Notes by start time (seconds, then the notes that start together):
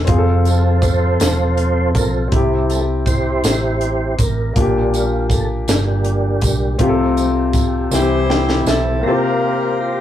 0.05 F1 F3 C4 F4, kick, closed hi-hat
0.12 G#4
0.18 A4
0.45 A4, closed hi-hat, tambourine
0.82 F4 A4 C5, kick, closed hi-hat, tambourine
1.20 E1, snare, closed hi-hat, tambourine
1.57 closed hi-hat
1.95 B1 C4 F4 A4 A#4, kick, closed hi-hat, tambourine
2.28 G3 C4 E4, closed hi-hat
2.32 C2 C3 G4, kick
2.70 A4, closed hi-hat, tambourine
3.06 E4 G4 C5, kick, closed hi-hat, tambourine
3.44 A1, snare, closed hi-hat, tambourine
3.81 closed hi-hat
4.18 A1 A#4, kick, closed hi-hat, tambourine
4.53 A#1 A#2 G3 A#3 D4, kick, closed hi-hat
4.60 G4
4.94 F4, closed hi-hat, tambourine
5.30 A4, kick, closed hi-hat, tambourine
5.68 G1 A#3 D4 G4, snare, closed hi-hat, tambourine
6.04 closed hi-hat
6.41 B1 G3 A#3 D4, kick, closed hi-hat, tambourine
6.78 C2 C3 F3 A3 C4 F4, kick, closed hi-hat
6.83 G4
6.89 A4
7.17 closed hi-hat, tambourine
7.53 kick, closed hi-hat, tambourine
7.91 C2 E3 G3 C4 E4 G4 C5, snare, tambourine
8.30 G5, snare
8.49 snare
8.66 B1 A4 E5, snare, tambourine
9.01 C3 A#3 C4 E4 G4 C5 A#5
9.06 F4 G4 A#4 C5
9.11 F4
9.81 G4